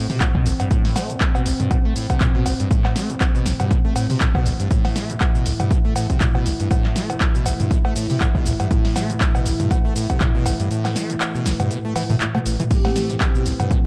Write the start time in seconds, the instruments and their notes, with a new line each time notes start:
Already playing: analog synth pad A2 E3 C4
0.10 acid bass C3, mid tom, open hi-hat, shaker
0.20 acid bass A2, kick, clap, closed hi-hat, cowbell, shaker
0.35 acid bass B2, kick, mid tom
0.46 acid bass A1, open hi-hat, shaker
0.60 acid bass G2, closed hi-hat, cowbell, shaker
0.71 acid bass A2, kick, closed hi-hat, shaker
0.85 snare, open hi-hat
0.96 acid bass A3, snare, open hi-hat, cowbell, shaker
1.10 acid bass G2, closed hi-hat, shaker
1.21 kick, clap, closed hi-hat, shaker
1.35 acid bass B2, cowbell, shaker
1.46 acid bass A1, open hi-hat, shaker
1.60 acid bass G2, closed hi-hat, mid tom, shaker
1.71 acid bass C3, kick, closed hi-hat, cowbell, shaker
1.85 acid bass A3
1.96 acid bass A2, open hi-hat, shaker
2.10 acid bass C3, kick, closed hi-hat, cowbell, shaker
2.21 acid bass A2, kick, clap, closed hi-hat, mid tom, shaker
2.35 acid bass B2
2.46 acid bass A1, open hi-hat, cowbell, shaker
2.60 acid bass G2, closed hi-hat, shaker
2.71 acid bass A2, kick, closed hi-hat, shaker
2.85 snare, clap, cowbell
2.96 acid bass A3, snare, open hi-hat, shaker
3.10 acid bass G2, closed hi-hat, shaker
3.21 kick, clap, closed hi-hat, cowbell, shaker
3.35 acid bass B2, shaker
3.46 acid bass A1, snare, open hi-hat, shaker
3.60 acid bass G2, closed hi-hat, mid tom, cowbell, shaker
3.71 acid bass C3, kick, closed hi-hat, shaker
3.85 acid bass A3
3.96 acid bass A2, open hi-hat, cowbell, shaker
4.10 acid bass C3, mid tom, open hi-hat, shaker
4.20 acid bass A2, kick, clap, closed hi-hat, shaker
4.35 acid bass B2, kick, mid tom, cowbell
4.46 acid bass A1, open hi-hat, shaker
4.60 acid bass G2, closed hi-hat, shaker
4.71 acid bass A2, analog synth pad E4, kick, closed hi-hat, shaker
4.85 snare, open hi-hat, cowbell
4.96 acid bass A3, snare, open hi-hat, shaker
5.10 acid bass G2, closed hi-hat, shaker
5.20 kick, clap, closed hi-hat, cowbell, shaker
5.35 acid bass B2, shaker
5.46 acid bass A1, open hi-hat, shaker
5.60 acid bass G2, closed hi-hat, mid tom, cowbell, shaker
5.71 acid bass C3, kick, closed hi-hat, shaker
5.85 acid bass A3
5.96 acid bass A2, open hi-hat, cowbell, shaker
6.10 acid bass C3, kick, closed hi-hat, shaker
6.21 acid bass A2, kick, clap, closed hi-hat, mid tom, shaker
6.35 acid bass B2, cowbell
6.46 acid bass A1, open hi-hat, shaker
6.60 acid bass G2, closed hi-hat, shaker
6.71 acid bass A2, kick, closed hi-hat, cowbell, shaker
6.85 snare, clap
6.96 acid bass A3, snare, open hi-hat, shaker
7.10 acid bass G2, closed hi-hat, cowbell, shaker
7.21 kick, clap, closed hi-hat, shaker
7.35 acid bass B2, shaker
7.46 acid bass A1, open hi-hat, cowbell, shaker
7.60 acid bass G2, closed hi-hat, mid tom, shaker
7.71 acid bass C3, kick, closed hi-hat, shaker
7.85 acid bass A3, cowbell
7.96 acid bass A2, open hi-hat, shaker
8.10 acid bass C3, mid tom, open hi-hat, shaker
8.21 acid bass A2, kick, clap, closed hi-hat, cowbell, shaker
8.35 acid bass B2, kick, mid tom
8.46 acid bass A1, open hi-hat, shaker
8.60 acid bass G2, closed hi-hat, cowbell, shaker
8.71 acid bass A2, kick, closed hi-hat, shaker
8.85 snare, open hi-hat
8.96 acid bass A3, snare, open hi-hat, cowbell, shaker
9.10 acid bass G2, closed hi-hat, shaker
9.21 kick, clap, closed hi-hat, shaker
9.35 acid bass B2, cowbell, shaker
9.46 acid bass A1, open hi-hat, shaker
9.60 acid bass G2, closed hi-hat, mid tom, shaker
9.71 acid bass C3, kick, closed hi-hat, cowbell, shaker
9.85 acid bass A3
9.96 acid bass A2, open hi-hat, shaker
10.10 acid bass C3, kick, closed hi-hat, cowbell, shaker
10.21 acid bass A2, kick, clap, closed hi-hat, mid tom, shaker
10.35 acid bass B2
10.46 acid bass A1, open hi-hat, cowbell, shaker
10.60 acid bass G2, closed hi-hat, shaker
10.71 acid bass A2, closed hi-hat, shaker
10.85 snare, clap, open hi-hat, cowbell, shaker
10.96 acid bass A3, snare, open hi-hat, shaker
11.10 acid bass G2, closed hi-hat, shaker
11.21 clap, closed hi-hat, cowbell, shaker
11.35 acid bass B2, shaker
11.46 acid bass A1, snare, open hi-hat, shaker
11.60 acid bass G2, closed hi-hat, mid tom, cowbell, shaker
11.71 acid bass C3, closed hi-hat, shaker
11.85 acid bass A3
11.96 acid bass E3, open hi-hat, cowbell, shaker
12.10 acid bass A2, mid tom, open hi-hat, shaker
12.20 acid bass A2, clap, closed hi-hat, shaker
12.35 acid bass A3, mid tom, cowbell
12.46 acid bass A1, open hi-hat, shaker
12.60 acid bass E3, closed hi-hat, mid tom, shaker
12.71 acid bass A2, analog synth pad C4, soft synth lead G4, kick, closed hi-hat, crash, shaker
12.85 acid bass A3, snare, open hi-hat, cowbell
12.96 acid bass A3, snare, open hi-hat, shaker
13.10 acid bass G2, closed hi-hat, shaker
13.20 kick, clap, closed hi-hat, cowbell, shaker
13.35 acid bass B2, shaker
13.46 acid bass A1, open hi-hat, shaker
13.60 acid bass G2, closed hi-hat, mid tom, cowbell, shaker
13.71 acid bass C3, kick, closed hi-hat, shaker